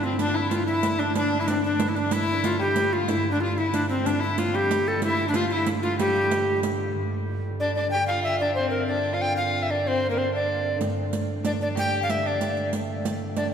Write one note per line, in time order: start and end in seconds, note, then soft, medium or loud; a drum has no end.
0.00 3.08 G2 medium
0.00 3.07 D3 medium
0.00 0.19 C4 medium
0.00 0.18 C4 medium
0.00 riq soft
0.19 0.35 D4 loud
0.19 0.38 D4 medium
0.19 riq medium
0.34 0.66 E4 medium
0.34 0.52 E4 medium
0.50 0.66 F4 medium
0.50 riq medium
0.66 1.01 E4 medium
0.66 1.01 E4 loud
0.66 riq soft
0.83 riq medium
0.99 1.15 D4 medium
0.99 1.16 D4 medium
0.99 riq soft
1.15 1.38 D4 medium
1.15 1.41 D4 medium
1.15 riq medium
1.40 1.48 E4 medium
1.40 1.49 E4 medium
1.46 1.52 D4 medium
1.46 1.64 D4 medium
1.46 riq medium
1.50 1.55 C4 medium
1.50 1.63 D4 medium
1.63 1.89 D4 medium
1.63 1.90 D4 medium
1.63 riq soft
1.80 riq medium
1.87 1.99 E4 medium
1.87 1.97 E4 medium
1.96 2.14 D4 medium
1.96 riq soft
2.11 2.61 E4 loud
2.11 2.44 E4 loud
2.11 riq medium
2.44 2.59 F4 medium
2.44 riq medium
2.59 2.76 G3 medium
2.59 2.94 G4 medium
2.76 2.96 G3 medium
2.76 riq medium
2.93 3.07 F4 medium
2.93 3.10 F4 medium
3.08 6.92 G2 medium
3.08 6.92 D3 medium
3.08 3.30 E4 loud
3.08 3.33 E4 medium
3.08 riq medium
3.31 3.42 D4 medium
3.31 3.41 D4 medium
3.40 3.60 F4 medium
3.40 3.57 F4 medium
3.57 3.87 E4 medium
3.57 3.72 E4 loud
3.57 riq soft
3.73 3.88 D4 medium
3.73 riq medium
3.89 4.08 C4 medium
3.89 4.07 C4 medium
3.89 riq soft
4.05 4.21 D4 medium
4.05 4.22 D4 medium
4.05 riq medium
4.20 4.40 E4 medium
4.20 4.39 E4 medium
4.38 4.57 F4 medium
4.38 4.55 F4 medium
4.38 riq medium
4.53 5.02 G3 medium
4.53 4.89 G4 loud
4.53 riq soft
4.71 riq medium
4.86 5.03 A4 medium
4.86 riq soft
5.02 5.29 E4 medium
5.02 5.26 E4 loud
5.02 riq medium
5.28 5.34 D4 medium
5.28 5.37 D4 medium
5.34 5.49 F4 medium
5.34 5.54 F4 loud
5.34 riq medium
5.50 5.65 E4 medium
5.50 5.68 E4 medium
5.50 riq soft
5.66 riq medium
5.82 5.98 F4 medium
5.82 riq soft
5.99 6.59 G3 medium
5.99 6.59 G4 loud
5.99 riq medium
6.16 riq soft
6.31 riq medium
6.63 riq medium
6.94 10.77 G2 medium
6.94 10.78 D3 medium
7.60 7.75 D4 medium
7.60 7.74 D5 medium
7.75 7.84 D4 medium
7.75 7.90 D5 medium
7.91 8.01 G4 medium
7.91 8.06 G5 loud
8.07 8.43 F4 medium
8.07 8.23 F5 medium
8.24 8.39 E5 medium
8.40 8.57 D4 medium
8.40 8.54 D5 medium
8.55 8.92 C4 medium
8.55 8.69 C5 medium
8.70 8.86 A#4 medium
8.87 9.15 D4 medium
8.87 9.16 D5 medium
9.13 9.37 F4 medium
9.13 9.23 F5 medium
9.22 9.36 G5 medium
9.37 9.71 F4 medium
9.37 9.64 F5 medium
9.63 9.72 E5 medium
9.70 9.85 D4 medium
9.70 9.89 D5 medium
9.85 10.07 C4 medium
9.85 10.10 C5 medium
10.09 10.18 A#3 medium
10.09 10.20 A#4 medium
10.17 10.31 C4 medium
10.17 10.33 C5 medium
10.32 10.77 D4 medium
10.32 10.79 D5 medium
10.79 13.54 G2 medium
10.79 13.54 D3 medium
10.79 riq medium
11.13 riq medium
11.44 11.59 D4 medium
11.44 11.51 D5 medium
11.44 riq medium
11.61 11.77 D4 medium
11.61 11.68 D5 medium
11.61 riq soft
11.76 12.24 G4 medium
11.76 12.00 G5 loud
11.76 riq medium
12.03 12.12 F5 medium
12.09 12.28 E5 medium
12.09 riq medium
12.25 12.69 D4 medium
12.25 12.74 D5 medium
12.41 riq medium
12.57 riq soft
12.73 riq medium
13.05 riq medium
13.36 13.50 D4 medium
13.36 13.50 D5 medium
13.36 riq medium